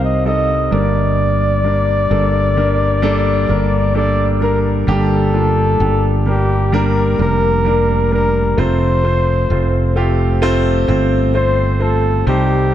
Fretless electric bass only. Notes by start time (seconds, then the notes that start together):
Already playing: C2
0.72 G1
2.11 G1
3.50 G1
4.88 G1
5.80 G1
7.19 F1
8.58 F1
9.50 F1
10.88 G1
12.27 C2